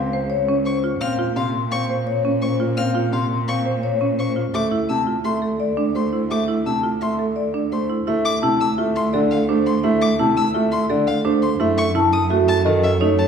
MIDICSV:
0, 0, Header, 1, 6, 480
1, 0, Start_track
1, 0, Tempo, 352941
1, 1379, Time_signature, 5, 2, 24, 8
1, 18058, End_track
2, 0, Start_track
2, 0, Title_t, "Violin"
2, 0, Program_c, 0, 40
2, 893, Note_on_c, 0, 85, 67
2, 1075, Note_off_c, 0, 85, 0
2, 1372, Note_on_c, 0, 89, 83
2, 1555, Note_off_c, 0, 89, 0
2, 1851, Note_on_c, 0, 77, 66
2, 2033, Note_off_c, 0, 77, 0
2, 2332, Note_on_c, 0, 85, 90
2, 2515, Note_off_c, 0, 85, 0
2, 3289, Note_on_c, 0, 85, 69
2, 3473, Note_off_c, 0, 85, 0
2, 3770, Note_on_c, 0, 89, 87
2, 3953, Note_off_c, 0, 89, 0
2, 4253, Note_on_c, 0, 77, 67
2, 4435, Note_off_c, 0, 77, 0
2, 4734, Note_on_c, 0, 85, 80
2, 4915, Note_off_c, 0, 85, 0
2, 5696, Note_on_c, 0, 85, 62
2, 5877, Note_off_c, 0, 85, 0
2, 6175, Note_on_c, 0, 86, 80
2, 6357, Note_off_c, 0, 86, 0
2, 6652, Note_on_c, 0, 88, 59
2, 6835, Note_off_c, 0, 88, 0
2, 7132, Note_on_c, 0, 84, 75
2, 7314, Note_off_c, 0, 84, 0
2, 8097, Note_on_c, 0, 84, 58
2, 8277, Note_off_c, 0, 84, 0
2, 8579, Note_on_c, 0, 86, 78
2, 8759, Note_off_c, 0, 86, 0
2, 9060, Note_on_c, 0, 88, 56
2, 9240, Note_off_c, 0, 88, 0
2, 9534, Note_on_c, 0, 84, 72
2, 9716, Note_off_c, 0, 84, 0
2, 10499, Note_on_c, 0, 84, 56
2, 10679, Note_off_c, 0, 84, 0
2, 11222, Note_on_c, 0, 86, 98
2, 11401, Note_off_c, 0, 86, 0
2, 11704, Note_on_c, 0, 88, 74
2, 11882, Note_off_c, 0, 88, 0
2, 12181, Note_on_c, 0, 84, 83
2, 12360, Note_off_c, 0, 84, 0
2, 12660, Note_on_c, 0, 77, 68
2, 12839, Note_off_c, 0, 77, 0
2, 13141, Note_on_c, 0, 84, 68
2, 13320, Note_off_c, 0, 84, 0
2, 13620, Note_on_c, 0, 86, 91
2, 13799, Note_off_c, 0, 86, 0
2, 14100, Note_on_c, 0, 88, 78
2, 14280, Note_off_c, 0, 88, 0
2, 14574, Note_on_c, 0, 84, 83
2, 14755, Note_off_c, 0, 84, 0
2, 15057, Note_on_c, 0, 77, 74
2, 15238, Note_off_c, 0, 77, 0
2, 15535, Note_on_c, 0, 84, 71
2, 15716, Note_off_c, 0, 84, 0
2, 16017, Note_on_c, 0, 85, 94
2, 16198, Note_off_c, 0, 85, 0
2, 16493, Note_on_c, 0, 87, 80
2, 16675, Note_off_c, 0, 87, 0
2, 16975, Note_on_c, 0, 81, 99
2, 17156, Note_off_c, 0, 81, 0
2, 17453, Note_on_c, 0, 76, 75
2, 17635, Note_off_c, 0, 76, 0
2, 17933, Note_on_c, 0, 81, 74
2, 18058, Note_off_c, 0, 81, 0
2, 18058, End_track
3, 0, Start_track
3, 0, Title_t, "Vibraphone"
3, 0, Program_c, 1, 11
3, 0, Note_on_c, 1, 77, 64
3, 250, Note_off_c, 1, 77, 0
3, 404, Note_on_c, 1, 73, 83
3, 725, Note_off_c, 1, 73, 0
3, 884, Note_on_c, 1, 72, 66
3, 1206, Note_off_c, 1, 72, 0
3, 1374, Note_on_c, 1, 77, 73
3, 1689, Note_off_c, 1, 77, 0
3, 1860, Note_on_c, 1, 84, 67
3, 2171, Note_off_c, 1, 84, 0
3, 2322, Note_on_c, 1, 77, 63
3, 2645, Note_off_c, 1, 77, 0
3, 2813, Note_on_c, 1, 73, 76
3, 3129, Note_off_c, 1, 73, 0
3, 3300, Note_on_c, 1, 72, 67
3, 3611, Note_off_c, 1, 72, 0
3, 3776, Note_on_c, 1, 77, 79
3, 4090, Note_off_c, 1, 77, 0
3, 4255, Note_on_c, 1, 84, 67
3, 4569, Note_off_c, 1, 84, 0
3, 4743, Note_on_c, 1, 77, 65
3, 5052, Note_off_c, 1, 77, 0
3, 5214, Note_on_c, 1, 73, 78
3, 5529, Note_off_c, 1, 73, 0
3, 5698, Note_on_c, 1, 72, 64
3, 6010, Note_off_c, 1, 72, 0
3, 6183, Note_on_c, 1, 76, 72
3, 6492, Note_off_c, 1, 76, 0
3, 6658, Note_on_c, 1, 81, 60
3, 6970, Note_off_c, 1, 81, 0
3, 7142, Note_on_c, 1, 76, 56
3, 7452, Note_off_c, 1, 76, 0
3, 7612, Note_on_c, 1, 74, 75
3, 7928, Note_off_c, 1, 74, 0
3, 8089, Note_on_c, 1, 72, 56
3, 8407, Note_off_c, 1, 72, 0
3, 8572, Note_on_c, 1, 76, 68
3, 8888, Note_off_c, 1, 76, 0
3, 9059, Note_on_c, 1, 81, 59
3, 9371, Note_off_c, 1, 81, 0
3, 9544, Note_on_c, 1, 76, 59
3, 9852, Note_off_c, 1, 76, 0
3, 10008, Note_on_c, 1, 74, 65
3, 10327, Note_off_c, 1, 74, 0
3, 10498, Note_on_c, 1, 72, 57
3, 10810, Note_off_c, 1, 72, 0
3, 10985, Note_on_c, 1, 76, 81
3, 11293, Note_off_c, 1, 76, 0
3, 11452, Note_on_c, 1, 81, 72
3, 11768, Note_off_c, 1, 81, 0
3, 11941, Note_on_c, 1, 76, 70
3, 12251, Note_off_c, 1, 76, 0
3, 12415, Note_on_c, 1, 74, 86
3, 12729, Note_off_c, 1, 74, 0
3, 12904, Note_on_c, 1, 72, 72
3, 13212, Note_off_c, 1, 72, 0
3, 13376, Note_on_c, 1, 76, 82
3, 13690, Note_off_c, 1, 76, 0
3, 13864, Note_on_c, 1, 81, 76
3, 14172, Note_off_c, 1, 81, 0
3, 14340, Note_on_c, 1, 76, 69
3, 14651, Note_off_c, 1, 76, 0
3, 14827, Note_on_c, 1, 74, 86
3, 15133, Note_off_c, 1, 74, 0
3, 15299, Note_on_c, 1, 72, 75
3, 15611, Note_off_c, 1, 72, 0
3, 15786, Note_on_c, 1, 76, 88
3, 16093, Note_off_c, 1, 76, 0
3, 16262, Note_on_c, 1, 81, 78
3, 16572, Note_off_c, 1, 81, 0
3, 16724, Note_on_c, 1, 76, 72
3, 17046, Note_off_c, 1, 76, 0
3, 17199, Note_on_c, 1, 75, 96
3, 17524, Note_off_c, 1, 75, 0
3, 17683, Note_on_c, 1, 73, 77
3, 18005, Note_off_c, 1, 73, 0
3, 18058, End_track
4, 0, Start_track
4, 0, Title_t, "Marimba"
4, 0, Program_c, 2, 12
4, 181, Note_on_c, 2, 72, 68
4, 492, Note_off_c, 2, 72, 0
4, 660, Note_on_c, 2, 61, 73
4, 971, Note_off_c, 2, 61, 0
4, 1140, Note_on_c, 2, 65, 63
4, 1451, Note_off_c, 2, 65, 0
4, 1615, Note_on_c, 2, 65, 81
4, 1929, Note_off_c, 2, 65, 0
4, 2579, Note_on_c, 2, 72, 72
4, 2891, Note_off_c, 2, 72, 0
4, 3058, Note_on_c, 2, 61, 75
4, 3370, Note_off_c, 2, 61, 0
4, 3536, Note_on_c, 2, 65, 62
4, 3849, Note_off_c, 2, 65, 0
4, 4010, Note_on_c, 2, 65, 81
4, 4327, Note_off_c, 2, 65, 0
4, 4971, Note_on_c, 2, 72, 70
4, 5288, Note_off_c, 2, 72, 0
4, 5453, Note_on_c, 2, 61, 71
4, 5769, Note_off_c, 2, 61, 0
4, 5932, Note_on_c, 2, 65, 59
4, 6248, Note_off_c, 2, 65, 0
4, 6412, Note_on_c, 2, 64, 74
4, 6728, Note_off_c, 2, 64, 0
4, 6894, Note_on_c, 2, 65, 57
4, 7209, Note_off_c, 2, 65, 0
4, 7371, Note_on_c, 2, 69, 66
4, 7688, Note_off_c, 2, 69, 0
4, 7850, Note_on_c, 2, 62, 70
4, 8167, Note_off_c, 2, 62, 0
4, 8332, Note_on_c, 2, 64, 52
4, 8648, Note_off_c, 2, 64, 0
4, 8816, Note_on_c, 2, 64, 73
4, 9130, Note_off_c, 2, 64, 0
4, 9294, Note_on_c, 2, 65, 56
4, 9609, Note_off_c, 2, 65, 0
4, 9778, Note_on_c, 2, 69, 57
4, 10090, Note_off_c, 2, 69, 0
4, 10255, Note_on_c, 2, 62, 64
4, 10569, Note_off_c, 2, 62, 0
4, 10738, Note_on_c, 2, 64, 56
4, 10961, Note_off_c, 2, 64, 0
4, 10977, Note_on_c, 2, 64, 69
4, 11290, Note_off_c, 2, 64, 0
4, 11463, Note_on_c, 2, 64, 93
4, 11772, Note_off_c, 2, 64, 0
4, 11943, Note_on_c, 2, 65, 72
4, 12252, Note_off_c, 2, 65, 0
4, 12427, Note_on_c, 2, 69, 78
4, 12734, Note_off_c, 2, 69, 0
4, 12906, Note_on_c, 2, 62, 93
4, 13213, Note_off_c, 2, 62, 0
4, 13381, Note_on_c, 2, 64, 65
4, 13691, Note_off_c, 2, 64, 0
4, 13863, Note_on_c, 2, 64, 92
4, 14172, Note_off_c, 2, 64, 0
4, 14342, Note_on_c, 2, 65, 68
4, 14652, Note_off_c, 2, 65, 0
4, 14819, Note_on_c, 2, 69, 71
4, 15131, Note_off_c, 2, 69, 0
4, 15298, Note_on_c, 2, 62, 93
4, 15610, Note_off_c, 2, 62, 0
4, 15773, Note_on_c, 2, 64, 73
4, 16089, Note_off_c, 2, 64, 0
4, 16252, Note_on_c, 2, 64, 100
4, 16568, Note_off_c, 2, 64, 0
4, 16734, Note_on_c, 2, 66, 78
4, 17049, Note_off_c, 2, 66, 0
4, 17215, Note_on_c, 2, 69, 78
4, 17529, Note_off_c, 2, 69, 0
4, 17693, Note_on_c, 2, 63, 97
4, 18009, Note_off_c, 2, 63, 0
4, 18058, End_track
5, 0, Start_track
5, 0, Title_t, "Grand piano"
5, 0, Program_c, 3, 0
5, 0, Note_on_c, 3, 60, 64
5, 253, Note_off_c, 3, 60, 0
5, 1373, Note_on_c, 3, 60, 81
5, 1689, Note_off_c, 3, 60, 0
5, 1850, Note_on_c, 3, 48, 67
5, 2168, Note_off_c, 3, 48, 0
5, 2336, Note_on_c, 3, 60, 70
5, 2650, Note_off_c, 3, 60, 0
5, 3775, Note_on_c, 3, 60, 77
5, 4089, Note_off_c, 3, 60, 0
5, 4250, Note_on_c, 3, 48, 62
5, 4567, Note_off_c, 3, 48, 0
5, 4733, Note_on_c, 3, 60, 66
5, 5049, Note_off_c, 3, 60, 0
5, 6176, Note_on_c, 3, 57, 78
5, 6490, Note_off_c, 3, 57, 0
5, 6664, Note_on_c, 3, 48, 64
5, 6973, Note_off_c, 3, 48, 0
5, 7137, Note_on_c, 3, 57, 59
5, 7450, Note_off_c, 3, 57, 0
5, 8096, Note_on_c, 3, 57, 58
5, 8410, Note_off_c, 3, 57, 0
5, 8578, Note_on_c, 3, 57, 74
5, 8890, Note_off_c, 3, 57, 0
5, 9060, Note_on_c, 3, 48, 59
5, 9371, Note_off_c, 3, 48, 0
5, 9542, Note_on_c, 3, 57, 54
5, 9852, Note_off_c, 3, 57, 0
5, 10501, Note_on_c, 3, 57, 58
5, 10811, Note_off_c, 3, 57, 0
5, 10986, Note_on_c, 3, 57, 85
5, 11293, Note_off_c, 3, 57, 0
5, 11461, Note_on_c, 3, 48, 75
5, 11771, Note_off_c, 3, 48, 0
5, 11948, Note_on_c, 3, 57, 69
5, 12254, Note_off_c, 3, 57, 0
5, 12433, Note_on_c, 3, 50, 90
5, 12735, Note_off_c, 3, 50, 0
5, 12916, Note_on_c, 3, 57, 74
5, 13217, Note_off_c, 3, 57, 0
5, 13384, Note_on_c, 3, 57, 89
5, 13692, Note_off_c, 3, 57, 0
5, 13874, Note_on_c, 3, 48, 75
5, 14176, Note_off_c, 3, 48, 0
5, 14349, Note_on_c, 3, 57, 76
5, 14654, Note_off_c, 3, 57, 0
5, 14821, Note_on_c, 3, 50, 86
5, 15131, Note_off_c, 3, 50, 0
5, 15300, Note_on_c, 3, 57, 76
5, 15611, Note_off_c, 3, 57, 0
5, 15772, Note_on_c, 3, 57, 89
5, 16088, Note_off_c, 3, 57, 0
5, 16253, Note_on_c, 3, 49, 74
5, 16569, Note_off_c, 3, 49, 0
5, 16737, Note_on_c, 3, 57, 74
5, 17050, Note_off_c, 3, 57, 0
5, 17214, Note_on_c, 3, 51, 92
5, 17529, Note_off_c, 3, 51, 0
5, 17701, Note_on_c, 3, 57, 82
5, 18011, Note_off_c, 3, 57, 0
5, 18058, End_track
6, 0, Start_track
6, 0, Title_t, "Cello"
6, 0, Program_c, 4, 42
6, 0, Note_on_c, 4, 37, 75
6, 1227, Note_off_c, 4, 37, 0
6, 1370, Note_on_c, 4, 46, 71
6, 6024, Note_off_c, 4, 46, 0
6, 6175, Note_on_c, 4, 38, 65
6, 10826, Note_off_c, 4, 38, 0
6, 10983, Note_on_c, 4, 38, 76
6, 15630, Note_off_c, 4, 38, 0
6, 15782, Note_on_c, 4, 42, 78
6, 18058, Note_off_c, 4, 42, 0
6, 18058, End_track
0, 0, End_of_file